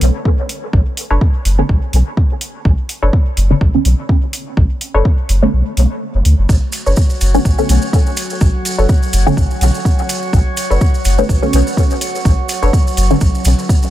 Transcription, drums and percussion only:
0.01 open hi-hat
0.25 kick
0.49 open hi-hat
0.73 kick
0.97 open hi-hat
1.21 kick
1.45 open hi-hat
1.69 kick
1.93 open hi-hat
2.17 kick
2.41 open hi-hat
2.65 kick
2.89 open hi-hat
3.13 kick
3.37 open hi-hat
3.61 kick
3.85 open hi-hat
4.09 kick
4.33 open hi-hat
4.57 kick
4.81 open hi-hat
5.05 kick
5.29 open hi-hat
5.77 open hi-hat
6.25 open hi-hat
6.49 kick, maracas
6.72 open hi-hat, maracas
6.86 maracas
6.96 kick, maracas
7.10 maracas
7.21 open hi-hat, maracas
7.34 maracas
7.45 kick, maracas
7.58 maracas
7.69 open hi-hat, maracas
7.82 maracas
7.93 kick, maracas
8.06 maracas
8.17 open hi-hat, maracas
8.30 maracas
8.41 kick, maracas
8.65 open hi-hat, maracas
8.79 maracas
8.89 kick, maracas
9.03 maracas
9.13 open hi-hat, maracas
9.27 maracas
9.37 kick, maracas
9.51 maracas
9.61 open hi-hat, maracas
9.74 maracas
9.85 kick, maracas
9.99 maracas
10.09 open hi-hat, maracas
10.22 maracas
10.33 kick, maracas
10.57 open hi-hat, maracas
10.71 maracas
10.81 kick, maracas
10.94 maracas
11.05 open hi-hat, maracas
11.18 maracas
11.29 kick, maracas
11.43 maracas
11.53 open hi-hat, maracas
11.67 maracas
11.77 kick, maracas
11.90 maracas
12.01 open hi-hat, maracas
12.15 maracas
12.25 kick, maracas
12.49 open hi-hat, maracas
12.62 maracas
12.73 kick, maracas
12.87 maracas
12.97 open hi-hat, maracas
13.10 maracas
13.21 kick, maracas
13.35 maracas
13.45 open hi-hat, maracas
13.59 maracas
13.69 kick, maracas
13.82 maracas

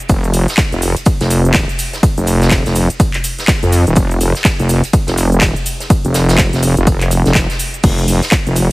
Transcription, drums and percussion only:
0.00 cabasa
0.09 kick, closed hi-hat, ride, cabasa, shaker
0.24 closed hi-hat, cabasa
0.33 open hi-hat, cabasa, shaker
0.48 snare, closed hi-hat, cabasa
0.57 kick, snare, clap, closed hi-hat, ride, cabasa, shaker
0.72 closed hi-hat, cabasa
0.82 open hi-hat, cabasa, shaker
0.97 closed hi-hat, cabasa
1.06 kick, closed hi-hat, ride, cabasa, shaker
1.21 snare, closed hi-hat
1.30 open hi-hat, cabasa, shaker
1.45 closed hi-hat, cabasa
1.54 kick, snare, clap, closed hi-hat, ride, cabasa, shaker
1.69 closed hi-hat, cabasa
1.79 open hi-hat, cabasa, shaker
1.93 snare, closed hi-hat, cabasa
2.03 kick, closed hi-hat, ride, cabasa, shaker
2.18 closed hi-hat, cabasa
2.27 open hi-hat, cabasa, shaker
2.42 snare, closed hi-hat, cabasa
2.51 kick, snare, clap, closed hi-hat, ride, cabasa, shaker
2.66 snare, closed hi-hat, cabasa
2.75 open hi-hat, cabasa, shaker
2.90 closed hi-hat, cabasa
3.00 kick, closed hi-hat, ride, cabasa, shaker
3.14 clap, closed hi-hat
3.24 open hi-hat, cabasa, shaker
3.39 snare, closed hi-hat, cabasa
3.48 kick, snare, clap, closed hi-hat, ride, cabasa, shaker
3.63 closed hi-hat, cabasa
3.72 open hi-hat, cabasa, shaker
3.87 closed hi-hat, cabasa
3.96 kick, closed hi-hat, ride, cabasa, shaker
4.11 closed hi-hat, cabasa
4.21 open hi-hat, cabasa, shaker
4.35 snare, closed hi-hat, cabasa
4.44 kick, snare, clap, closed hi-hat, ride, cabasa, shaker
4.59 closed hi-hat, cabasa
4.69 open hi-hat, cabasa, shaker
4.84 closed hi-hat, cabasa
4.93 kick, closed hi-hat, ride, cabasa, shaker
5.07 snare, closed hi-hat
5.18 open hi-hat, cabasa, shaker
5.32 closed hi-hat, cabasa
5.41 kick, snare, clap, closed hi-hat, ride, cabasa, shaker
5.56 closed hi-hat, cabasa
5.66 open hi-hat, cabasa, shaker
5.80 snare, closed hi-hat, cabasa
5.90 kick, closed hi-hat, ride, cabasa, shaker
6.05 closed hi-hat, cabasa
6.14 snare, open hi-hat, cabasa, shaker
6.29 snare, closed hi-hat, cabasa, shaker
6.38 kick, snare, clap, closed hi-hat, ride, cabasa, shaker
6.53 snare, closed hi-hat, cabasa
6.63 open hi-hat, cabasa, shaker
6.77 closed hi-hat, cabasa
6.87 kick, closed hi-hat, ride, cabasa, shaker
7.01 clap, closed hi-hat, cabasa
7.11 open hi-hat, cabasa, shaker
7.26 snare, closed hi-hat, cabasa
7.35 kick, snare, clap, closed hi-hat, ride, cabasa, shaker
7.50 snare, closed hi-hat, cabasa
7.59 open hi-hat, cabasa, shaker
7.74 closed hi-hat, cabasa
7.83 kick, closed hi-hat, crash, ride, cabasa, shaker
7.98 closed hi-hat, cabasa
8.08 open hi-hat, cabasa, shaker
8.22 snare, closed hi-hat, cabasa
8.31 kick, snare, clap, closed hi-hat, ride, cabasa, shaker
8.47 closed hi-hat, cabasa
8.55 open hi-hat, cabasa, shaker

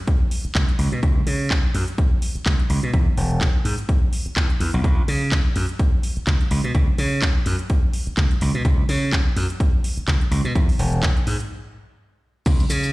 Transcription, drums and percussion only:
0.07 kick, closed hi-hat
0.31 open hi-hat
0.45 closed hi-hat
0.55 kick, clap, closed hi-hat
0.69 closed hi-hat
0.79 open hi-hat
0.93 closed hi-hat
1.03 kick, closed hi-hat
1.27 open hi-hat
1.51 kick, clap
1.75 open hi-hat
1.88 closed hi-hat
1.98 kick, closed hi-hat
2.22 open hi-hat
2.36 closed hi-hat
2.46 kick, clap, closed hi-hat
2.60 closed hi-hat
2.70 open hi-hat
2.83 closed hi-hat
2.94 kick, closed hi-hat
3.17 open hi-hat
3.41 kick, clap, closed hi-hat
3.65 open hi-hat
3.79 closed hi-hat
3.89 kick, closed hi-hat
4.13 open hi-hat
4.26 closed hi-hat
4.36 kick, clap, closed hi-hat
4.50 closed hi-hat
4.61 open hi-hat
4.84 kick, closed hi-hat
5.08 open hi-hat
5.32 kick, clap, closed hi-hat
5.56 open hi-hat
5.69 closed hi-hat
5.79 kick, closed hi-hat
6.03 open hi-hat
6.17 closed hi-hat
6.27 kick, clap, closed hi-hat
6.41 closed hi-hat
6.51 open hi-hat
6.75 kick, closed hi-hat
6.98 open hi-hat
7.22 kick, clap, closed hi-hat
7.46 open hi-hat
7.59 closed hi-hat
7.70 kick, closed hi-hat
7.93 open hi-hat
8.07 closed hi-hat
8.17 kick, clap, closed hi-hat
8.31 closed hi-hat
8.41 open hi-hat
8.65 kick, closed hi-hat
8.89 open hi-hat
9.13 kick, clap, closed hi-hat
9.37 open hi-hat
9.50 closed hi-hat
9.60 kick, closed hi-hat
9.84 open hi-hat
9.98 closed hi-hat
10.08 kick, clap, closed hi-hat
10.21 closed hi-hat
10.32 open hi-hat
10.45 closed hi-hat
10.55 kick, closed hi-hat
10.69 open hi-hat
10.79 open hi-hat
10.93 closed hi-hat
11.03 kick, clap, closed hi-hat
11.17 closed hi-hat
11.27 open hi-hat
11.40 closed hi-hat
12.46 kick, closed hi-hat, crash, shaker
12.60 shaker
12.70 open hi-hat, shaker
12.83 shaker

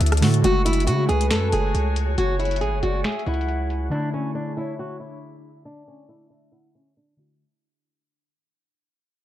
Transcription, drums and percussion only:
0.01 closed hi-hat
0.06 closed hi-hat
0.12 cross-stick, closed hi-hat
0.17 closed hi-hat
0.22 snare, closed hi-hat, open hi-hat
0.34 closed hi-hat
0.44 closed hi-hat
0.66 closed hi-hat
0.73 closed hi-hat
0.80 closed hi-hat
0.87 closed hi-hat
1.09 closed hi-hat
1.21 closed hi-hat
1.31 finger snap, snare, closed hi-hat
1.52 closed hi-hat
1.75 closed hi-hat
1.96 closed hi-hat
2.18 closed hi-hat
2.40 closed hi-hat
2.45 closed hi-hat
2.51 closed hi-hat
2.56 closed hi-hat
2.61 closed hi-hat
2.83 closed hi-hat
3.04 finger snap, snare, closed hi-hat
3.12 closed hi-hat
3.19 closed hi-hat
3.27 closed hi-hat
3.34 closed hi-hat
3.41 closed hi-hat
3.48 closed hi-hat
3.70 closed hi-hat

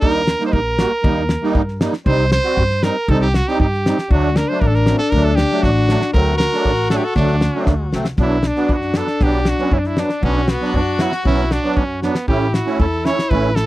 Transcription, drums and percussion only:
0.02 kick
0.27 snare
0.40 snare
0.53 kick
0.79 snare
1.04 kick
1.29 snare
1.55 kick
1.68 snare
1.81 snare
1.93 snare
2.06 kick
2.32 snare
2.57 kick
2.70 snare
2.83 snare
3.08 kick
3.34 snare
3.48 snare
3.60 kick
3.73 snare
3.86 snare
3.98 snare
4.11 kick
4.36 snare
4.61 kick
4.74 snare
4.86 snare
5.12 kick
5.38 snare
5.51 snare
5.63 kick, snare
5.89 snare
6.01 snare
6.14 kick
6.40 snare
6.54 snare
6.65 kick
6.90 snare
7.16 kick, snare
7.41 snare
7.66 kick, snare
7.93 snare
8.05 snare
8.17 kick, snare
8.43 snare
8.56 snare
8.69 kick
8.81 snare
8.94 snare
9.07 snare
9.20 kick, snare
9.45 snare
9.58 snare
9.72 kick
9.84 snare
9.97 snare
10.09 snare
10.23 kick
10.48 snare
10.74 kick
10.99 snare
11.12 snare
11.25 kick
11.51 snare
11.77 kick
12.02 snare
12.15 snare
12.28 kick
12.54 snare
12.67 snare
12.80 kick
13.05 snare
13.19 snare
13.31 kick
13.56 snare

